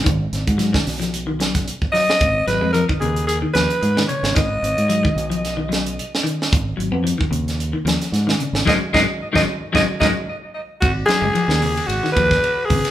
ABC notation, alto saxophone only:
X:1
M:4/4
L:1/16
Q:"Swing 16ths" 1/4=112
K:G#dor
V:1 name="Alto saxophone"
z12 z2 d2- | d2 B2 A2 G2 G2 B4 c2 | d8 z8 | z16 |
d z d z2 d z2 d z d z4 z | F2 G6 F2 B4 G2 |]